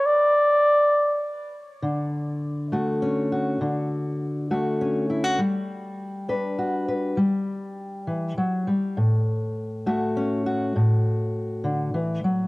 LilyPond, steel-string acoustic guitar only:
\new Staff \with { instrumentName = "Steel-string acoustic guitar" } { \time 6/8 \key d \major \tempo 4. = 67 << { r2. | r4. fis'8 cis'8 fis'8 | r4. fis'8 cis'8 e'16 fis'16 | r4. b'8 fis'8 b'8 |
r2. | r4. fis'8 cis'8 fis'8 | r2. | } \\ { r2. | d4. a4. | d4. a4. | g4. d'4. |
g4. e8 fis8 g8 | a,4. a4. | a,4. d8 e8 fis8 | } >> }